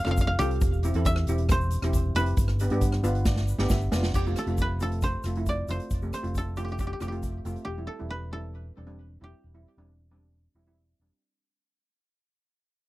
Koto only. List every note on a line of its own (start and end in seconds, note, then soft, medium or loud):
0.00 0.54 G5 loud
0.05 0.11 F5 medium
0.11 0.21 F5 medium
0.21 0.27 F5 medium
0.27 1.12 F5 medium
0.39 2.43 G4 loud
1.06 2.55 E5 loud
1.52 2.22 C5 loud
2.16 3.93 B4 loud
4.15 6.19 G4 medium
4.38 4.82 A4 medium
4.62 5.10 B4 medium
4.82 6.37 A4 medium
5.04 5.70 C5 medium
5.49 7.09 D5 medium
5.71 6.13 C5 medium
6.14 7.85 C5 medium
6.38 7.87 A4 medium
6.57 6.64 G4 medium
6.65 6.71 G4 soft
6.72 6.80 G4 medium
6.80 6.86 G4 soft
6.87 6.93 G4 medium
6.93 7.01 G4 soft
7.02 7.08 G4 medium
7.08 7.64 G4 soft
7.65 9.23 G4 medium
7.87 8.32 A4 medium
8.10 9.88 B4 loud
8.33 10.23 A4 medium
9.24 11.28 G4 medium